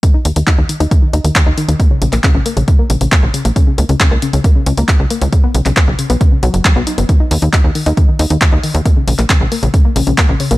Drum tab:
HH |x-xxx-xxx-xxx-xx|x-xxx-xxx-xxx-xx|x-xxx-xxx-xxx-xx|x-xxx-xxx-xxx-xx|
CP |----x-------x---|---xx-------x---|----x-------x---|---xx-------x---|
BD |o---o---o---o---|o---o---o---o---|o---o---o---o---|o---o---o---o---|

HH |x-oxx-oxx-oxx-ox|x-oxx-oxx-oxx-ox|
CP |----x-------x---|---xx-------x---|
BD |o---o---o---o---|o---o---o---o---|